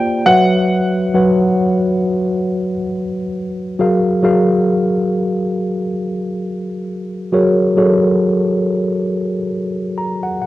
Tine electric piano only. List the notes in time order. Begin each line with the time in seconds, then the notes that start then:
Already playing: A#3 F4 G4 C5 D5
0.26 F#3 F#4 B4 C#5 E5
1.14 F#3 F#4 B4 C#5 F#5
3.79 F#3 F#4 G#4 A#4 F5
4.23 F#3 F#4 G#4 A#4 F5
7.32 F#3 F#4 G#4 A#4 C#5
7.76 F#3 F#4 G#4 A4 C#5
7.84 A#4
9.98 A#5
10.23 F#5
10.42 F#5